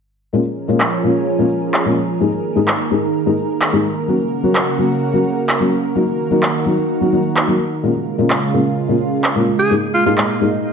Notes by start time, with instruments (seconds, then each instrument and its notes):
0.33 felt piano A#2 G#3 A#3 C#4 F4, analog synth pad F3 C#4 G#4 A#4
0.68 felt piano A#2 G#3 A#3 C#4 F4
0.80 clap
1.03 felt piano A#2 G#3 A#3 C#4 F4
1.38 felt piano A#2 G#3 A#3 C#4 F4
1.74 clap
1.85 felt piano A#2 G#3 A#3 C#4 F4
2.20 felt piano G#2 G#3 A#3 D#4 G#4, analog synth pad D#3 A#3
2.55 felt piano G#2 G#3 A#3 D#4 G#4
2.68 clap
2.91 felt piano G#2 G#3 A#3 D#4 G#4
3.26 felt piano G#2 G#3 A#3 D#4 G#4
3.62 clap
3.73 felt piano G#2 G#3 A#3 D#4 G#4
4.08 analog synth pad C#3 F#4, felt piano F#3 A#3 C#4 F#4
4.43 felt piano F#3 A#3 C#4 F#4
4.55 clap
4.78 felt piano F#3 A#3 C#4 F#4
5.13 felt piano F#3 A#3 C#4 F#4
5.49 clap
5.60 felt piano F#3 A#3 C#4 F#4
5.95 analog synth pad D#3 F#4, felt piano F#3 A#3 D#4 F#4
6.30 felt piano F#3 A#3 D#4 F#4
6.43 clap
6.66 felt piano F#3 A#3 D#4 F#4
7.01 felt piano F#3 A#3 D#4 F#4
7.12 felt piano F#3 A#3 D#4 F#4
7.37 clap
7.48 felt piano F#3 A#3 D#4 F#4
7.83 felt piano A#2 G#3 A#3 C#4 F4, analog synth pad C#3 G#3 F4
8.18 felt piano A#2 G#3 A#3 C#4 F4
8.30 clap
8.53 felt piano A#2 G#3 A#3 C#4 F4
8.88 felt piano A#2 G#3 A#3 C#4 F4
9.24 clap
9.35 felt piano A#2 G#3 A#3 C#4 F4
9.59 alto saxophone G#4
9.70 felt piano G#2 G#3 A#3 D#4 G#4, analog synth pad A#2 D#4
9.94 alto saxophone F4
10.05 felt piano G#2 G#3 A#3 D#4 G#4, alto saxophone F4
10.18 clap
10.41 felt piano G#2 G#3 A#3 D#4 G#4